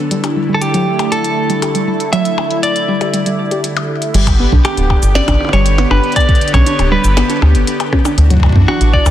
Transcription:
0.00 4.10 D3 medium
0.11 0.22 G3 medium
0.11 4.10 A3 medium
0.11 4.10 E4 medium
0.11 closed hi-hat medium
0.24 0.36 G4 medium
0.24 closed hi-hat soft
0.24 percussion blips soft
0.36 0.48 G3 medium
0.49 0.61 G3 medium
0.54 0.61 A4 medium
0.61 1.13 G4 medium
0.61 closed hi-hat medium
0.74 0.85 F#3 loud
0.74 closed hi-hat soft
0.99 closed hi-hat soft
0.99 percussion blips medium
1.12 2.12 A4 medium
1.12 closed hi-hat medium
1.25 closed hi-hat soft
1.50 1.61 G3 medium
1.50 closed hi-hat soft
1.62 1.74 G4 medium
1.62 closed hi-hat medium
1.62 percussion blips soft
1.75 1.86 G3 medium
1.75 closed hi-hat soft
1.88 2.00 G3 medium
2.00 closed hi-hat soft
2.13 2.24 F#3 loud
2.13 2.60 E5 loud
2.13 closed hi-hat medium
2.25 closed hi-hat soft
2.38 percussion blips medium
2.51 closed hi-hat soft
2.63 3.60 D5 medium
2.63 closed hi-hat medium
2.76 closed hi-hat soft
2.88 3.00 G3 medium
3.01 3.13 G4 medium
3.01 closed hi-hat soft
3.01 percussion blips soft
3.14 3.25 G3 medium
3.14 closed hi-hat medium
3.26 3.38 G3 medium
3.26 closed hi-hat soft
3.51 3.63 G4 medium
3.51 closed hi-hat soft
3.64 closed hi-hat medium
3.77 closed hi-hat soft
3.77 percussion blips medium
4.02 closed hi-hat soft
4.14 4.46 G1 loud
4.14 8.14 D3 medium
4.14 4.26 G3 loud
4.14 8.14 B3 medium
4.14 8.14 G4 medium
4.14 closed hi-hat medium
4.14 crash loud
4.27 kick loud
4.27 closed hi-hat medium
4.27 percussion blips medium
4.40 4.52 B3 medium
4.52 4.61 B1 loud
4.52 4.64 D4 medium
4.52 kick loud
4.65 5.17 G4 medium
4.65 closed hi-hat medium
4.65 percussion blips medium
4.77 4.95 D1 medium
4.77 closed hi-hat soft
4.90 kick medium
4.90 percussion blips medium
5.03 5.20 G1 loud
5.03 closed hi-hat soft
5.03 shaker medium
5.15 5.27 C#4 medium
5.15 5.53 D5 loud
5.15 snare loud
5.15 closed hi-hat medium
5.28 5.37 G1 medium
5.28 5.35 D4 loud
5.28 kick loud
5.28 closed hi-hat medium
5.28 percussion blips medium
5.28 percussion blips loud
5.41 percussion blips soft
5.45 percussion blips soft
5.49 percussion blips medium
5.53 5.85 G1 loud
5.53 5.64 G3 loud
5.53 5.90 C#5 loud
5.53 closed hi-hat soft
5.53 percussion blips medium
5.66 closed hi-hat medium
5.78 5.90 B3 medium
5.78 closed hi-hat medium
5.78 percussion blips medium
5.91 6.00 G1 medium
5.91 6.02 D4 medium
5.91 6.16 B4 loud
5.91 percussion blips medium
6.04 closed hi-hat soft
6.12 closed hi-hat soft
6.16 6.54 D5 loud
6.16 kick medium
6.16 closed hi-hat medium
6.16 percussion blips medium
6.20 closed hi-hat soft
6.29 kick loud
6.29 closed hi-hat soft
6.35 closed hi-hat soft
6.41 closed hi-hat soft
6.48 closed hi-hat soft
6.54 6.63 B1 loud
6.54 6.65 C#4 medium
6.54 6.91 C#5 loud
6.54 kick loud
6.54 closed hi-hat soft
6.54 percussion blips medium
6.66 6.73 D4 loud
6.66 closed hi-hat medium
6.79 6.97 D1 loud
6.79 closed hi-hat medium
6.79 percussion blips soft
6.92 7.03 G3 loud
6.92 7.39 B4 medium
7.04 7.22 G1 loud
7.04 closed hi-hat soft
7.04 shaker medium
7.17 7.29 B3 medium
7.17 snare loud
7.17 closed hi-hat medium
7.17 percussion blips medium
7.30 7.41 D4 medium
7.30 closed hi-hat medium
7.42 7.56 D2 medium
7.42 percussion blips medium
7.55 7.64 G1 medium
7.55 closed hi-hat soft
7.67 closed hi-hat medium
7.80 closed hi-hat medium
7.80 percussion blips medium
7.93 8.04 C#4 medium
7.93 kick medium
7.93 percussion blips medium
8.05 8.12 D4 loud
8.05 closed hi-hat soft
8.05 percussion blips medium
8.05 shaker medium
8.18 8.50 D2 loud
8.18 9.11 E3 medium
8.18 9.11 D4 medium
8.18 9.11 F#4 medium
8.18 closed hi-hat medium
8.30 8.42 F#3 loud
8.30 kick medium
8.30 closed hi-hat medium
8.34 kick medium
8.37 kick medium
8.40 kick medium
8.43 kick medium
8.43 percussion blips medium
8.46 kick medium
8.49 kick loud
8.52 8.68 B3 medium
8.52 kick loud
8.56 8.64 F#2 loud
8.56 kick loud
8.68 8.79 D4 medium
8.68 8.94 F#4 medium
8.68 percussion blips medium
8.81 8.99 A1 medium
8.81 closed hi-hat medium
8.93 9.11 D5 loud
8.93 kick medium
9.06 9.11 D2 loud
9.06 closed hi-hat soft
9.06 percussion blips medium
9.06 shaker medium

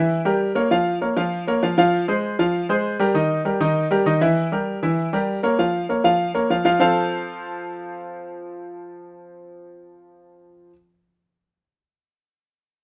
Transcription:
0.00 0.20 E3 loud
0.00 0.20 E4 loud
0.00 0.20 E5 loud
0.25 0.50 G3 medium
0.25 0.51 G4 medium
0.25 0.51 A#4 medium
0.55 0.68 A#3 medium
0.55 0.68 A#4 medium
0.55 0.68 C#5 medium
0.71 0.96 F3 medium
0.71 0.96 F4 medium
0.71 0.96 F5 medium
1.01 1.14 A#3 medium
1.01 1.14 A#4 medium
1.01 1.14 C#5 medium
1.17 1.42 F3 loud
1.17 1.42 F4 medium
1.17 1.42 F5 medium
1.47 1.60 A#3 medium
1.47 1.60 A#4 medium
1.47 1.60 C#5 medium
1.63 1.75 F3 medium
1.63 1.75 F4 medium
1.63 1.76 F5 medium
1.78 2.03 F3 loud
1.78 2.03 F4 loud
1.78 2.03 F5 loud
2.08 2.33 G#3 medium
2.08 2.33 G#4 medium
2.08 2.34 C5 medium
2.39 2.64 F3 medium
2.39 2.64 F4 loud
2.39 2.64 F5 medium
2.69 2.94 G#3 medium
2.69 2.95 G#4 medium
2.69 2.95 C5 medium
2.99 3.12 G3 medium
2.99 3.12 G4 loud
2.99 3.13 A#4 medium
3.14 3.40 D#3 medium
3.14 3.40 D#4 medium
3.14 3.40 D#5 medium
3.45 3.58 G3 medium
3.45 3.58 G4 medium
3.45 3.58 A#4 medium
3.60 3.86 D#3 loud
3.60 3.86 D#4 loud
3.60 3.86 D#5 medium
3.91 4.03 G3 medium
3.91 4.04 G4 medium
3.91 4.04 A#4 medium
4.06 4.19 D#3 medium
4.06 4.19 D#4 medium
4.06 4.19 D#5 medium
4.21 4.46 E3 loud
4.21 4.47 E4 loud
4.21 4.47 E5 loud
4.52 4.77 G3 medium
4.52 4.77 G4 medium
4.52 4.77 A#4 medium
4.83 5.08 E3 medium
4.83 5.08 E4 medium
4.83 5.08 E5 medium
5.13 5.38 G3 medium
5.13 5.38 G4 medium
5.13 5.38 A#4 medium
5.43 5.56 A#3 medium
5.43 5.56 A#4 medium
5.43 5.56 C#5 medium
5.59 5.84 F3 medium
5.59 5.84 F4 medium
5.59 5.84 F5 medium
5.89 6.02 A#3 medium
5.89 6.02 A#4 medium
5.89 6.02 C#5 medium
6.04 6.29 F3 medium
6.04 6.29 F4 medium
6.04 6.30 F5 loud
6.35 6.47 A#3 medium
6.35 6.47 A#4 medium
6.35 6.47 C#5 medium
6.50 6.63 F3 medium
6.50 6.63 F4 medium
6.50 6.63 F5 medium
6.65 6.78 F3 loud
6.65 6.78 F4 loud
6.65 6.78 F5 loud
6.80 10.70 F3 medium
6.80 10.70 C4 medium
6.80 10.70 F4 medium
6.80 10.70 A4 medium
6.80 10.70 C5 medium
6.80 10.70 F5 loud

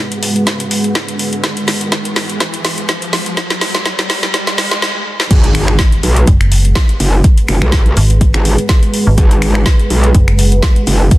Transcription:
0.00 4.78 G#3 medium
0.00 4.78 G#4 medium
0.00 4.78 B4 medium
0.00 4.78 F#5 medium
0.00 riser medium
0.12 closed hi-hat medium
0.23 open hi-hat loud
0.36 closed hi-hat soft
0.47 kick loud
0.47 snare medium
0.47 closed hi-hat medium
0.60 closed hi-hat medium
0.71 open hi-hat loud
0.84 closed hi-hat soft
0.95 kick loud
0.95 snare medium
0.95 closed hi-hat medium
1.08 closed hi-hat medium
1.19 open hi-hat loud
1.33 closed hi-hat soft
1.44 kick loud
1.44 snare medium
1.44 closed hi-hat medium
1.57 closed hi-hat soft
1.68 snare medium
1.68 open hi-hat loud
1.81 closed hi-hat soft
1.92 kick loud
1.92 snare medium
1.92 closed hi-hat medium
2.05 closed hi-hat soft
2.16 snare medium
2.16 open hi-hat loud
2.30 closed hi-hat soft
2.40 kick loud
2.40 snare medium
2.40 closed hi-hat medium
2.54 closed hi-hat medium
2.65 snare medium
2.65 open hi-hat loud
2.78 closed hi-hat soft
2.89 kick loud
2.89 snare medium
2.89 closed hi-hat medium
3.02 closed hi-hat medium
3.13 snare medium
3.13 open hi-hat loud
3.26 closed hi-hat soft
3.37 kick loud
3.37 snare medium
3.37 closed hi-hat medium
3.50 snare medium
3.50 closed hi-hat soft
3.61 snare medium
3.61 open hi-hat loud
3.75 snare medium
3.75 closed hi-hat soft
3.85 kick loud
3.85 snare medium
3.85 closed hi-hat medium
3.99 snare medium
3.99 closed hi-hat soft
4.10 snare loud
4.10 open hi-hat loud
4.23 snare medium
4.23 closed hi-hat soft
4.34 kick loud
4.34 snare loud
4.34 closed hi-hat medium
4.47 snare medium
4.47 closed hi-hat medium
4.58 snare loud
4.58 open hi-hat loud
4.71 snare medium
4.71 closed hi-hat soft
4.82 snare loud
5.20 snare medium
5.31 5.77 G#1 loud
5.31 11.18 G#3 medium
5.31 11.18 G#4 medium
5.31 11.18 B4 medium
5.31 11.18 F#5 medium
5.31 kick loud
5.31 closed hi-hat medium
5.31 crash loud
5.31 impact medium
5.44 closed hi-hat medium
5.55 finger snap medium
5.55 open hi-hat loud
5.68 finger snap medium
5.79 kick loud
5.79 snare loud
5.79 closed hi-hat medium
5.92 closed hi-hat soft
6.03 6.26 B1 loud
6.03 open hi-hat loud
6.17 closed hi-hat medium
6.27 6.74 F#1 loud
6.27 kick loud
6.27 closed hi-hat medium
6.41 finger snap medium
6.41 closed hi-hat soft
6.52 open hi-hat loud
6.65 closed hi-hat soft
6.75 kick loud
6.75 snare loud
6.75 closed hi-hat medium
6.89 closed hi-hat soft
7.00 7.22 F#1 loud
7.00 open hi-hat loud
7.24 kick loud
7.24 closed hi-hat medium
7.38 closed hi-hat medium
7.48 7.60 F#1 loud
7.48 finger snap medium
7.48 open hi-hat loud
7.62 7.95 B1 loud
7.62 finger snap medium
7.72 kick loud
7.72 snare loud
7.72 closed hi-hat medium
7.86 closed hi-hat soft
7.97 8.32 G#1 loud
7.97 open hi-hat loud
8.10 closed hi-hat soft
8.21 kick loud
8.21 closed hi-hat medium
8.34 8.56 G#1 loud
8.34 finger snap medium
8.34 closed hi-hat soft
8.45 open hi-hat loud
8.58 closed hi-hat soft
8.69 kick loud
8.69 snare loud
8.69 closed hi-hat medium
8.83 closed hi-hat soft
8.94 open hi-hat loud
9.07 9.16 G#1 loud
9.18 9.64 G#1 loud
9.18 kick loud
9.18 closed hi-hat medium
9.31 closed hi-hat soft
9.42 finger snap medium
9.42 open hi-hat loud
9.55 finger snap medium
9.66 kick loud
9.66 snare loud
9.66 closed hi-hat medium
9.79 closed hi-hat soft
9.90 10.13 B1 loud
9.90 open hi-hat loud
10.04 closed hi-hat medium
10.15 10.61 F#1 loud
10.15 kick loud
10.15 closed hi-hat medium
10.28 finger snap medium
10.28 closed hi-hat soft
10.39 open hi-hat loud
10.52 closed hi-hat soft
10.63 kick loud
10.63 snare loud
10.63 closed hi-hat medium
10.76 closed hi-hat soft
10.87 11.10 F#1 loud
10.87 open hi-hat loud
11.11 kick loud
11.11 closed hi-hat medium

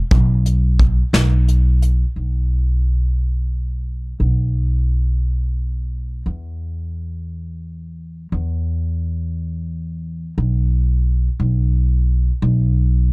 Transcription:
0.11 1.01 B1 medium
0.11 kick loud
0.11 closed hi-hat medium
0.46 closed hi-hat medium
0.80 kick medium
0.80 closed hi-hat medium
1.13 2.03 B1 medium
1.13 snare medium
1.13 closed hi-hat medium
1.48 closed hi-hat medium
1.82 closed hi-hat medium
2.16 4.17 B1 medium
4.20 6.22 B1 medium
6.26 8.28 E2 medium
8.32 10.34 E2 medium
10.38 11.27 B1 medium
11.40 12.29 B1 medium
12.42 13.13 B1 medium

